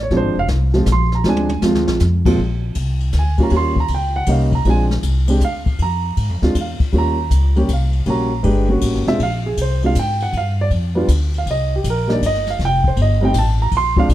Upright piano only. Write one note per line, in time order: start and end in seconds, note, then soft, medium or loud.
0.03 0.13 C#5 medium
0.12 0.34 F3 medium
0.12 0.34 G#3 medium
0.12 0.34 C4 medium
0.12 0.35 D4 medium
0.17 0.38 C5 medium
0.39 0.46 F5 loud
0.74 0.85 F3 medium
0.74 0.85 G#3 medium
0.74 0.86 C4 medium
0.74 0.86 F4 medium
0.92 1.14 C6 medium
1.15 1.26 A#5 medium
1.26 1.47 F3 medium
1.26 1.48 G#3 medium
1.26 1.48 C4 medium
1.26 1.48 D4 medium
1.26 1.62 G#5 medium
1.63 2.00 F3 medium
1.63 2.01 G#3 medium
1.63 2.01 C4 medium
1.63 2.01 F4 medium
2.26 2.37 A#2 medium
2.26 2.37 F3 medium
2.26 2.37 G#3 medium
2.26 2.38 C4 medium
2.26 2.38 F4 medium
3.19 3.41 G#5 medium
3.38 3.49 G3 medium
3.38 3.50 A#3 medium
3.38 3.50 C#4 medium
3.38 3.51 F4 medium
3.43 3.53 A#5 medium
3.51 3.74 G3 medium
3.51 3.74 A#3 medium
3.51 3.74 C#4 medium
3.51 3.75 F4 medium
3.56 3.78 C6 loud
3.80 3.91 A#5 loud
3.95 4.16 G5 medium
4.16 4.28 F#5 medium
4.27 4.50 G3 medium
4.27 4.50 A#3 medium
4.27 4.50 C#4 soft
4.27 4.51 D#4 medium
4.31 4.54 F5 medium
4.55 4.66 A#5 medium
4.65 4.88 G#3 medium
4.65 4.88 C4 medium
4.65 4.89 D4 medium
4.65 4.89 F4 medium
4.70 4.84 G#5 loud
5.28 5.39 G#3 medium
5.28 5.40 C4 medium
5.28 5.40 D4 medium
5.28 5.40 G4 medium
5.45 5.78 F5 medium
5.82 6.40 A#5 loud
6.42 6.53 G#3 medium
6.42 6.54 C4 medium
6.42 6.54 D4 medium
6.42 6.54 F4 medium
6.61 6.93 F5 medium
6.92 7.15 G3 medium
6.92 7.15 A#3 medium
6.92 7.16 C#4 medium
6.92 7.16 F4 medium
6.98 7.54 A#5 loud
7.56 7.67 G3 medium
7.56 7.67 A#3 medium
7.56 7.68 C#4 medium
7.56 7.68 G4 medium
7.73 8.06 F5 medium
8.06 8.29 G3 medium
8.06 8.29 A#3 medium
8.06 8.29 C#4 medium
8.06 8.30 F#4 medium
8.06 8.67 A#5 medium
8.43 8.66 G#3 medium
8.43 8.66 B3 medium
8.43 8.66 D4 medium
8.43 8.67 G4 medium
8.68 9.01 G3 medium
8.68 9.02 A#3 medium
8.68 9.02 C#4 medium
8.68 9.03 F#4 medium
9.07 9.18 G#3 medium
9.07 9.19 C4 medium
9.07 9.19 D4 medium
9.07 9.19 F4 medium
9.07 9.20 E5 medium
9.23 9.45 F5 loud
9.46 9.58 G#4 medium
9.62 9.84 C5 medium
9.83 9.94 G#3 medium
9.83 9.94 C4 medium
9.83 9.95 D4 soft
9.83 9.95 F4 medium
9.83 9.97 F5 loud
9.99 10.22 G5 loud
10.23 10.34 F#5 medium
10.37 10.59 F5 medium
10.61 10.68 D5 loud
10.95 11.07 G3 medium
10.95 11.07 B3 medium
10.95 11.07 D4 medium
10.95 11.08 F4 medium
11.38 11.48 F5 medium
11.51 11.73 D#5 medium
11.76 11.86 G4 medium
11.90 12.11 A#4 medium
12.07 12.19 G3 medium
12.07 12.20 A#3 medium
12.07 12.20 D4 medium
12.07 12.20 D#4 medium
12.13 12.23 D5 medium
12.26 12.48 D#5 loud
12.50 12.61 F5 medium
12.65 12.86 G5 loud
12.88 12.98 C5 medium
13.02 13.23 D#5 medium
13.21 13.33 G3 medium
13.21 13.33 A3 medium
13.21 13.33 C4 medium
13.21 13.34 D#4 medium
13.21 13.36 G5 medium
13.39 13.61 A5 loud
13.62 13.73 A#5 medium
13.77 13.99 C6 loud
13.97 14.14 F3 medium
13.97 14.14 G#3 medium
13.97 14.14 C4 medium
13.97 14.14 D4 medium
13.97 14.06 F5 loud